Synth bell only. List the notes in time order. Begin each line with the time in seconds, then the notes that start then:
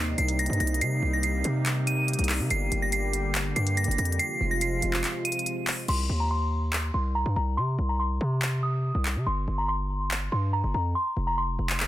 Already playing: C7
0.18 C7
0.39 A#6
0.60 A#6
0.82 C7
1.13 A#6
1.24 C7
1.87 D#7
2.51 C7
2.82 A#6
2.93 C7
3.56 C7
3.77 A#6
3.99 A#6
4.19 C7
4.51 A#6
4.62 C7
5.25 D#7
5.89 C6
6.20 A#5
6.31 C6
6.94 C6
7.15 A#5
7.36 A#5
7.57 C6
7.89 A#5
8.00 C6
8.63 D#6
9.26 C6
9.58 A#5
9.68 C6
10.32 C6
10.53 A#5
10.74 A#5
10.95 C6
11.27 A#5
11.38 C6